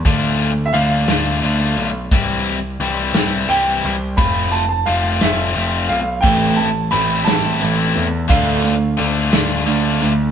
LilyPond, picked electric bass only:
\new Staff \with { instrumentName = "Picked electric bass" } { \clef bass \time 6/8 \key d \dorian \tempo 4. = 58 d,4 d,8 d,8 d,8 b,,8 | c,4 c,8 c,8 c,8 c,8 | f,,4 f,,8 f,,8 f,,8 b,,8 | a,,4 a,,8 a,,8 a,,8 e,8 |
d,4 d,8 d,8 d,8 d,8 | }